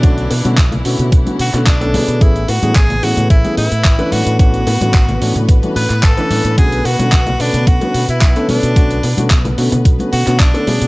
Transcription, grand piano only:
X:1
M:4/4
L:1/16
Q:1/4=110
K:Bdor
V:1 name="Grand piano"
[D,A,B,CF] z2 [D,A,B,CF] z2 [D,A,B,CF]3 [D,A,B,CF] z [D,A,B,CF] z [D,A,B,CA] [D,A,B,CG]2 | [E,A,B,CG] z2 [E,A,B,CG] z2 [E,A,B,CG]3 [E,A,B,CG] z3 [E,A,CDB]3 | [E,A,CDF] z2 [E,A,CDF] z2 [E,A,CDF]3 [E,A,CDF] z3 [E,A,CDB]3 | [D,A,B,CF] z2 [D,A,B,CF] z2 [D,A,B,CF]3 [D,A,B,CF] z3 [D,A,B,CA]3 |
[D,A,B,CF] z2 [D,A,B,CF] z2 [D,A,B,CF]3 [D,A,B,CF] z [D,A,B,CF] z [D,A,B,CA] [D,A,B,CG]2 |]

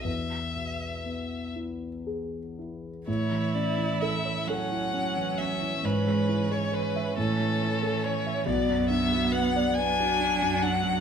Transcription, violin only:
X:1
M:6/8
L:1/16
Q:3/8=44
K:E
V:1 name="Violin"
e6 z6 | [K:A] c2 d2 e2 f4 e2 | B3 c B2 A4 c2 | d2 e2 f2 g4 f2 |]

